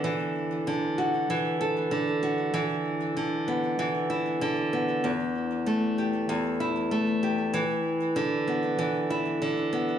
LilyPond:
\new Staff \with { instrumentName = "Nylon-string guitar" } { \clef bass \time 4/4 \key e \minor \tempo 4 = 96 e4 d8 fis'8 e8 a'8 d8 fis'8 | e4 d8 b8 e8 e'8 d8 b8 | e,4 a8 g'8 e,8 e'8 a8 g'8 | e4 d8 b8 e8 e'8 d8 b8 | }